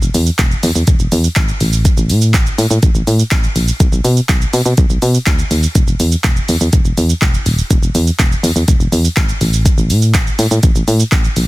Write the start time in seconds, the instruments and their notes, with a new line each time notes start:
0.02 fm bass E1, shaker
0.14 fm bass E2, open hi-hat, shaker
0.26 shaker
0.39 fm bass E1, kick, clap, closed hi-hat, shaker
0.51 shaker
0.63 fm bass E2, open hi-hat, shaker
0.75 fm bass E2, shaker
0.87 fm bass E1, kick, closed hi-hat, shaker
0.99 fm bass E1, shaker
1.12 fm bass E2, open hi-hat, shaker
1.24 shaker
1.36 fm bass G#1, kick, clap, closed hi-hat, shaker
1.48 shaker
1.60 fm bass A1, open hi-hat, shaker
1.73 shaker
1.85 kick, closed hi-hat, shaker
1.97 fm bass A1, shaker
2.10 fm bass A2, open hi-hat, shaker
2.22 shaker
2.34 fm bass A1, kick, clap, closed hi-hat, shaker
2.46 shaker
2.58 fm bass A2, open hi-hat, shaker
2.70 fm bass A2, shaker
2.83 fm bass A1, kick, closed hi-hat, shaker
2.95 fm bass A1, shaker
3.07 fm bass A2, open hi-hat, shaker
3.19 shaker
3.31 fm bass A1, kick, clap, closed hi-hat, shaker
3.44 shaker
3.56 fm bass A#1, open hi-hat, shaker
3.68 shaker
3.80 fm bass B1, kick, closed hi-hat, shaker
3.92 fm bass B1, shaker
4.04 fm bass B2, open hi-hat, shaker
4.17 shaker
4.29 fm bass B1, kick, clap, closed hi-hat, shaker
4.41 shaker
4.53 fm bass B2, open hi-hat, shaker
4.66 fm bass B2, shaker
4.77 fm bass B1, kick, closed hi-hat, shaker
4.90 fm bass B1, shaker
5.02 fm bass B2, open hi-hat, shaker
5.14 shaker
5.26 fm bass D2, kick, clap, closed hi-hat, shaker
5.39 shaker
5.51 fm bass D#2, open hi-hat, shaker
5.63 shaker
5.75 fm bass E1, kick, closed hi-hat, shaker
5.87 fm bass E1, shaker
6.00 fm bass E2, open hi-hat, shaker
6.12 shaker
6.24 fm bass E1, kick, clap, closed hi-hat, shaker
6.36 shaker
6.48 fm bass E2, open hi-hat, shaker
6.61 fm bass E2, shaker
6.73 fm bass E1, kick, closed hi-hat, shaker
6.85 fm bass E1, shaker
6.97 fm bass E2, open hi-hat, shaker
7.10 shaker
7.22 fm bass E1, kick, clap, closed hi-hat, shaker
7.34 shaker
7.46 fm bass D#1, open hi-hat, shaker
7.58 shaker
7.71 fm bass E1, kick, closed hi-hat, shaker
7.83 fm bass E1, shaker
7.95 fm bass E2, open hi-hat, shaker
8.07 shaker
8.19 fm bass E1, kick, clap, closed hi-hat, shaker
8.32 shaker
8.43 fm bass E2, open hi-hat, shaker
8.56 fm bass E2, shaker
8.68 fm bass E1, kick, closed hi-hat, shaker
8.80 fm bass E1, shaker
8.92 fm bass E2, open hi-hat, shaker
9.05 shaker
9.17 fm bass G#1, kick, clap, closed hi-hat, shaker
9.29 shaker
9.41 fm bass A1, open hi-hat, shaker
9.53 shaker
9.66 kick, closed hi-hat, shaker
9.78 fm bass A1, shaker
9.90 fm bass A2, open hi-hat, shaker
10.02 shaker
10.14 fm bass A1, kick, clap, closed hi-hat, shaker
10.27 shaker
10.39 fm bass A2, open hi-hat, shaker
10.51 fm bass A2, shaker
10.63 fm bass A1, kick, closed hi-hat, shaker
10.75 fm bass A1, shaker
10.88 fm bass A2, open hi-hat, shaker
11.00 shaker
11.12 fm bass A1, kick, clap, closed hi-hat, shaker
11.24 shaker
11.36 fm bass A#1, open hi-hat, shaker